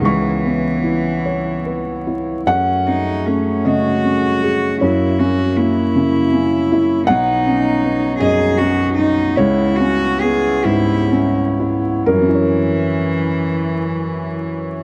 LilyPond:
<<
  \new Staff \with { instrumentName = "Cello" } { \time 6/8 \key cis \minor \tempo 4. = 50 e2~ e8. r16 | cis'8 dis'8 cis'8 fis'4. | e'8 fis'8 e'2 | dis'4. gis'8 fis'8 dis'8 |
e'8 fis'8 gis'8 e'8. r8. | e2. | }
  \new Staff \with { instrumentName = "Harmonium" } { \time 6/8 \key cis \minor << { cis''2. | cis''2.~ | cis''2. | cis''2.~ |
cis''2. | cis''2. | } \\ { e'2. | gis'2. | e'2. | dis'2. |
e'2. | e'2. | } >> }
  \new Staff \with { instrumentName = "Harmonium" } { \time 6/8 \key cis \minor b2. | a2. | ais2. | b2.~ |
b2. | cis'2. | }
  \new Staff \with { instrumentName = "Felt piano" } { \time 6/8 \key cis \minor << { cis'''4. r4. | fis''4. dis''4. | cis''2~ cis''8 r8 | fis''4. dis''4. |
cis''2~ cis''8 r8 | <fis, fis cis' e' ais' cis''>2. | } \\ { cis,8 b8 e'8 cis''8 b'8 e'8 | fis,8 cis'8 a8 cis8 cis'8 gis'8 | fis,8 cis'8 ais8 cis8 cis'8 e'8 | b,,8 cis'8 b8 fis,8 cis'8 dis'8 |
cis,8 cis'8 b8 gis,8 cis'8 e'8 | r2. | } >> }
>>